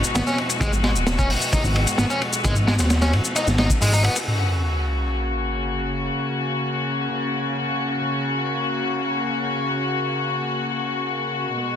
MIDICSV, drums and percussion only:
0, 0, Header, 1, 2, 480
1, 0, Start_track
1, 0, Tempo, 458015
1, 641, Time_signature, 4, 2, 24, 8
1, 12326, End_track
2, 0, Start_track
2, 0, Title_t, "Drums"
2, 42, Note_on_c, 9, 82, 58
2, 147, Note_off_c, 9, 82, 0
2, 161, Note_on_c, 9, 51, 96
2, 163, Note_on_c, 9, 82, 50
2, 169, Note_on_c, 9, 38, 117
2, 266, Note_off_c, 9, 51, 0
2, 268, Note_off_c, 9, 82, 0
2, 274, Note_off_c, 9, 38, 0
2, 285, Note_on_c, 9, 38, 49
2, 285, Note_on_c, 9, 82, 29
2, 389, Note_off_c, 9, 82, 0
2, 390, Note_off_c, 9, 38, 0
2, 399, Note_on_c, 9, 51, 69
2, 504, Note_off_c, 9, 51, 0
2, 518, Note_on_c, 9, 51, 44
2, 524, Note_on_c, 9, 82, 59
2, 623, Note_off_c, 9, 51, 0
2, 629, Note_off_c, 9, 82, 0
2, 638, Note_on_c, 9, 36, 109
2, 643, Note_on_c, 9, 82, 51
2, 647, Note_on_c, 9, 51, 76
2, 742, Note_off_c, 9, 36, 0
2, 748, Note_off_c, 9, 82, 0
2, 752, Note_off_c, 9, 51, 0
2, 764, Note_on_c, 9, 82, 30
2, 869, Note_off_c, 9, 82, 0
2, 877, Note_on_c, 9, 51, 60
2, 878, Note_on_c, 9, 38, 49
2, 982, Note_off_c, 9, 51, 0
2, 983, Note_off_c, 9, 38, 0
2, 1004, Note_on_c, 9, 82, 60
2, 1109, Note_off_c, 9, 82, 0
2, 1117, Note_on_c, 9, 38, 118
2, 1121, Note_on_c, 9, 51, 84
2, 1123, Note_on_c, 9, 82, 50
2, 1222, Note_off_c, 9, 38, 0
2, 1226, Note_off_c, 9, 51, 0
2, 1228, Note_off_c, 9, 82, 0
2, 1244, Note_on_c, 9, 82, 29
2, 1245, Note_on_c, 9, 36, 85
2, 1348, Note_off_c, 9, 82, 0
2, 1350, Note_off_c, 9, 36, 0
2, 1363, Note_on_c, 9, 46, 76
2, 1468, Note_off_c, 9, 46, 0
2, 1483, Note_on_c, 9, 82, 59
2, 1588, Note_off_c, 9, 82, 0
2, 1602, Note_on_c, 9, 36, 104
2, 1602, Note_on_c, 9, 51, 80
2, 1602, Note_on_c, 9, 82, 51
2, 1707, Note_off_c, 9, 36, 0
2, 1707, Note_off_c, 9, 51, 0
2, 1707, Note_off_c, 9, 82, 0
2, 1723, Note_on_c, 9, 82, 30
2, 1828, Note_off_c, 9, 82, 0
2, 1841, Note_on_c, 9, 51, 65
2, 1946, Note_off_c, 9, 51, 0
2, 1959, Note_on_c, 9, 51, 41
2, 1963, Note_on_c, 9, 82, 59
2, 2064, Note_off_c, 9, 51, 0
2, 2068, Note_off_c, 9, 82, 0
2, 2076, Note_on_c, 9, 38, 103
2, 2079, Note_on_c, 9, 51, 86
2, 2083, Note_on_c, 9, 82, 49
2, 2181, Note_off_c, 9, 38, 0
2, 2184, Note_off_c, 9, 51, 0
2, 2187, Note_off_c, 9, 82, 0
2, 2203, Note_on_c, 9, 51, 43
2, 2204, Note_on_c, 9, 82, 30
2, 2308, Note_off_c, 9, 51, 0
2, 2308, Note_off_c, 9, 82, 0
2, 2322, Note_on_c, 9, 51, 65
2, 2427, Note_off_c, 9, 51, 0
2, 2443, Note_on_c, 9, 82, 61
2, 2547, Note_off_c, 9, 82, 0
2, 2563, Note_on_c, 9, 36, 110
2, 2563, Note_on_c, 9, 51, 84
2, 2563, Note_on_c, 9, 82, 53
2, 2668, Note_off_c, 9, 36, 0
2, 2668, Note_off_c, 9, 51, 0
2, 2668, Note_off_c, 9, 82, 0
2, 2682, Note_on_c, 9, 82, 32
2, 2787, Note_off_c, 9, 82, 0
2, 2806, Note_on_c, 9, 38, 109
2, 2809, Note_on_c, 9, 51, 69
2, 2911, Note_off_c, 9, 38, 0
2, 2914, Note_off_c, 9, 51, 0
2, 2922, Note_on_c, 9, 82, 63
2, 2926, Note_on_c, 9, 38, 93
2, 2933, Note_on_c, 9, 51, 82
2, 3026, Note_off_c, 9, 82, 0
2, 3031, Note_off_c, 9, 38, 0
2, 3038, Note_off_c, 9, 51, 0
2, 3040, Note_on_c, 9, 51, 72
2, 3042, Note_on_c, 9, 82, 52
2, 3044, Note_on_c, 9, 38, 96
2, 3144, Note_off_c, 9, 51, 0
2, 3146, Note_off_c, 9, 82, 0
2, 3149, Note_off_c, 9, 38, 0
2, 3163, Note_on_c, 9, 82, 30
2, 3164, Note_on_c, 9, 51, 71
2, 3165, Note_on_c, 9, 38, 103
2, 3268, Note_off_c, 9, 82, 0
2, 3269, Note_off_c, 9, 51, 0
2, 3270, Note_off_c, 9, 38, 0
2, 3283, Note_on_c, 9, 51, 69
2, 3387, Note_off_c, 9, 51, 0
2, 3401, Note_on_c, 9, 82, 60
2, 3506, Note_off_c, 9, 82, 0
2, 3521, Note_on_c, 9, 51, 83
2, 3521, Note_on_c, 9, 82, 53
2, 3626, Note_off_c, 9, 51, 0
2, 3626, Note_off_c, 9, 82, 0
2, 3642, Note_on_c, 9, 82, 33
2, 3650, Note_on_c, 9, 38, 41
2, 3747, Note_off_c, 9, 82, 0
2, 3754, Note_off_c, 9, 38, 0
2, 3754, Note_on_c, 9, 51, 83
2, 3758, Note_on_c, 9, 38, 107
2, 3859, Note_off_c, 9, 51, 0
2, 3862, Note_off_c, 9, 38, 0
2, 3877, Note_on_c, 9, 36, 85
2, 3881, Note_on_c, 9, 82, 62
2, 3981, Note_off_c, 9, 36, 0
2, 3986, Note_off_c, 9, 82, 0
2, 4001, Note_on_c, 9, 82, 52
2, 4003, Note_on_c, 9, 46, 68
2, 4106, Note_off_c, 9, 82, 0
2, 4107, Note_off_c, 9, 46, 0
2, 4122, Note_on_c, 9, 82, 31
2, 4227, Note_off_c, 9, 82, 0
2, 4238, Note_on_c, 9, 51, 63
2, 4343, Note_off_c, 9, 51, 0
2, 4356, Note_on_c, 9, 51, 42
2, 4361, Note_on_c, 9, 82, 64
2, 4461, Note_off_c, 9, 51, 0
2, 4466, Note_off_c, 9, 82, 0
2, 12326, End_track
0, 0, End_of_file